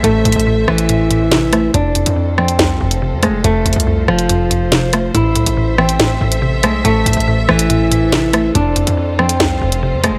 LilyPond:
<<
  \new Staff \with { instrumentName = "String section" } { \time 4/4 \key a \minor \tempo 4 = 141 <a a' c'' e''>1 | <f f' a' c''>1~ | <f f' a' c''>1 | <a a' e''>1~ |
<a a' e''>1 | <f f' c''>1 | }
  \new Staff \with { instrumentName = "Nylon-string guitar" } { \time 4/4 \key a \minor a4. e2~ e8 | d'4. c'2 gis8 | a4. f2~ f8 | e'4. c'2 gis8 |
a4. e2~ e8 | d'4. c'2 gis8 | }
  \new Staff \with { instrumentName = "Synth pluck" } { \clef bass \time 4/4 \key a \minor <a, c a>8 a,8 a,8 e8 a,8 a,8 c8 a8 | f,8 f,8 f,8 f8 f,8 f,8 c8 a8 | f,8 f,8 f,8 f8 f,8 f,8 c8 a8 | a,8 a,8 a,8 e8 a,8 a,8 c8 a8 |
a,8 a,8 a,8 e8 a,8 a,8 c8 a8 | f,8 f,8 f,8 f8 f,8 f,8 c8 a8 | }
  \new Staff \with { instrumentName = "808-style bass" } { \clef bass \time 4/4 \key a \minor a,,8 a,,16 a,,8. a,,2~ a,,8 | f,,8. f,4~ f,16 c,8 f,,8. f,16. f,,16. | f,,8 f,,16 c,8. f,,2~ f,,8 | a,,8 c,16 a,,4.~ a,,16 a,,4 b,,8 |
a,,8 a,,16 a,,8. a,,2~ a,,8 | f,,8. f,4~ f,16 c,8 f,,8. f,16. f,,16. | }
  \new DrumStaff \with { instrumentName = "Drums" } \drummode { \time 4/4 \tuplet 3/2 { hh16 r16 r16 hh16 hh16 hh16 } r8 ss16 hh16 hh8 hh8 <hh sn>8 <hh ss>8 | hh8 hh16 hh16 r8 ss16 hh16 <hh sn>8. hh16 r8 <hh ss>8 | \tuplet 3/2 { hh16 r16 r16 hh16 hh16 hh16 } r8 ss16 hh16 hh8 hh8 <hh sn>8 <hh ss>8 | hh8 hh16 hh16 r8 ss16 hh16 <hh sn>8. hh16 r8 <hh ss>8 |
\tuplet 3/2 { hh16 r16 r16 hh16 hh16 hh16 } r8 ss16 hh16 hh8 hh8 <hh sn>8 <hh ss>8 | hh8 hh16 hh16 r8 ss16 hh16 <hh sn>8. hh16 r8 <hh ss>8 | }
>>